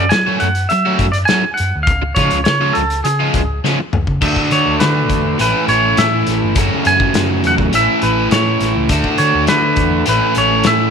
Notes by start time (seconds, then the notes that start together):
Already playing: D5
0.09 G#5, muted overdriven electric guitar stroke, snare, closed hi-hat
0.14 F#3
0.26 F#3 A3 C#4 F#4
0.40 F#2 F#5, closed hi-hat
0.55 closed hi-hat
0.69 F#3 E5, muted overdriven electric guitar stroke, closed hi-hat
0.85 F#3 A3 C#4 F#4
0.99 F#2, kick, closed hi-hat
1.12 D5, closed hi-hat
1.25 G#5, snare, closed hi-hat
1.30 F#3 A3 C#4 F#4
1.44 muted overdriven electric guitar stroke
1.54 F#5, closed hi-hat
1.60 F#2
1.75 D2
1.83 F5, closed hi-hat
1.87 C#2, kick
2.02 muted overdriven electric guitar stroke
2.15 C#3 F3 G#3 C#4 F4 C#5, kick, closed hi-hat
2.31 C#2, closed hi-hat
2.44 C#3 C#5, muted overdriven electric guitar stroke, snare, closed hi-hat
2.61 F3 G#3 C#4 F4
2.73 C#2 A4, closed hi-hat
2.90 closed hi-hat
3.04 C#3 G#4, muted overdriven electric guitar stroke, closed hi-hat
3.20 F3 G#3 C#4 F4
3.34 C#2, kick, closed hi-hat
3.64 C#3 F3 G#3 C#4 F4, snare
3.80 muted overdriven electric guitar stroke
3.93 C#2, mid tom
4.07 C#3, kick
4.21 D2 D3 A3 D4 F#4, kick, crash
4.36 kick
4.51 D3 C#5, closed hi-hat
4.66 D2
4.80 D3 B4, snare, closed hi-hat
5.10 E2, kick, closed hi-hat
5.39 A1 A2 E3 A3 C#4 E4 B4, closed hi-hat
5.68 A1 C#5, closed hi-hat
5.97 A2 E5, snare, closed hi-hat
6.27 A1, snare, closed hi-hat
6.43 G1
6.56 F#1 F#2 C#3 F#3 A3 C#4 F#4, kick, closed hi-hat
6.85 F#2 G#5, closed hi-hat
7.00 F#1, kick
7.14 F#2, snare, closed hi-hat
7.44 E2 F#5, closed hi-hat
7.58 kick
7.73 A1 A2 E3 A3 C#4 E4 E5, closed hi-hat
8.02 A1 B4, closed hi-hat
8.31 A2 C#5, snare, closed hi-hat
8.61 A1, snare, closed hi-hat
8.76 C#2
8.89 D2 D3 A3 D4 F#4, kick, closed hi-hat
9.04 kick
9.18 D3 C#5, closed hi-hat
9.34 D2
9.47 D3 B4, snare, closed hi-hat
9.76 E2, kick, closed hi-hat
10.06 A1 A2 E3 A3 C#4 E4 B4, closed hi-hat
10.35 A1 C#5, closed hi-hat
10.64 A2 E5, snare, closed hi-hat